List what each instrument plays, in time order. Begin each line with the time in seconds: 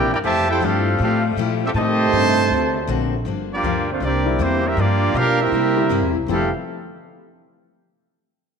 Already playing: steel-string acoustic guitar C3 E3 A#3 D4, saxophone section D3 A#3 C4 E4, trumpet section A#4 D5 G5
0.00 upright bass A#1
0.09 upright bass G1, trombone section A#3 E4 G4
0.13 trumpet section E4 A#4 D5 G5
0.23 upright bass F2, trombone section C3 E3 A3, steel-string acoustic guitar F3 A3 E4 G4, saxophone section F3 G3 A3 F4, trumpet section G4 C5 E5 G#5 A5
0.48 trombone section C4 E4 G4, trumpet section E4 A4 C5 G5
0.60 upright bass G2, steel-string acoustic guitar F3 A3 E4 G4, trombone section A3 C4 F4, trumpet section C4 A4 F5
0.65 trumpet section G4
0.99 upright bass A2, steel-string acoustic guitar F3 A3 E4 G4, trombone section A3 C4 F4
1.03 trumpet section C4 G4 A4 F5
1.37 upright bass A#2, steel-string acoustic guitar F3 A3 E4 G4
1.62 trombone section A3 C4 E4, trumpet section C4 G4 A4 E5
1.74 upright bass A2, steel-string acoustic guitar A2 G3 C4 D#4, saxophone section C3 G3 D#4, trombone section C3 D#3 A3, trumpet section G4 C5 D#5 A5
2.13 upright bass G2, steel-string acoustic guitar A2 G3 C4 D#4
2.50 upright bass D2, saxophone section A#2 C3 F#3 D4, steel-string acoustic guitar D3 A#3 C4 F#4
2.87 upright bass A#1, steel-string acoustic guitar D3 A#3 C4 F#4
3.25 upright bass G1, steel-string acoustic guitar G2 F3 A#3 D4
3.52 trombone section F3 A#3 D4, trumpet section A#3 F4 G4 D5
3.63 upright bass D2, steel-string acoustic guitar G2 F3 A#3 D4
3.91 trumpet section A3 D4 F4 C5, trombone section C4
4.00 upright bass C2, steel-string acoustic guitar C3 G3 A#3 E4, trombone section G3 A#3 D4
4.04 trumpet section C4 G4 A#4 D5
4.26 grand piano D3 G3 C4 E4
4.39 upright bass E2, steel-string acoustic guitar C3 G3 A#3 E4, trombone section E3 G3 C4, trumpet section A#3 E4 G4 C5
4.65 trombone section G3 A#3 E4, trumpet section C4 G4 A#4 E5
4.77 upright bass G2, steel-string acoustic guitar G2 F3 A#3 D4, trombone section F3 A#3 D4, trumpet section A#3 F4 G4 D5
5.14 steel-string acoustic guitar G2 F3 A#3 D4, upright bass B2, trombone section A#3 D4 F4, trumpet section D4 G4 A#4 F5
5.41 trombone section G3 A#3 E4, trumpet section C4 G4 A#4 E5
5.52 upright bass C3, steel-string acoustic guitar C3 G3 A#3 E4
5.77 grand piano D3 G3 C4 E4
5.89 upright bass G2, steel-string acoustic guitar C3 G3 A#3 E4
6.02 upright bass E2
6.15 upright bass C2
6.27 upright bass F1, trombone section F2 C3 E3 A3, grand piano D3 G3 C4 E4, steel-string acoustic guitar F3 A3 E4, trumpet section C4 G4 A4 F5
6.31 steel-string acoustic guitar G4